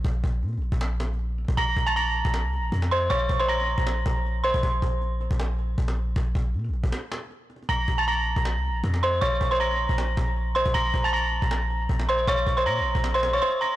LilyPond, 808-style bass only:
\new Staff \with { instrumentName = "808-style bass" } { \clef bass \time 4/4 \key bes \minor \tempo 4 = 157 bes,,8 bes,,8 bes,16. bes,,16. bes,,2 bes,,16 | bes,,8 bes,,4~ bes,,16 bes,,8 c,16. bes,,16. f,4 | bes,,8 bes,,4~ bes,,16 bes,,8. bes,,4~ bes,,16 bes,,16 | bes,,8 bes,,4~ bes,,16 bes,,4~ bes,,16 bes,,4 |
bes,,8 bes,,8 bes,16. bes,,16. bes,,16 r2 | bes,,8 bes,,4~ bes,,16 bes,,8 c,16. bes,,16. f,4 | bes,,8 bes,,4~ bes,,16 bes,,8. bes,,4~ bes,,16 bes,,16 | bes,,8 bes,,4~ bes,,16 bes,,4~ bes,,16 bes,,4 |
bes,,8 bes,,8 bes,16. bes,,16. bes,,4~ bes,,16 r4 | }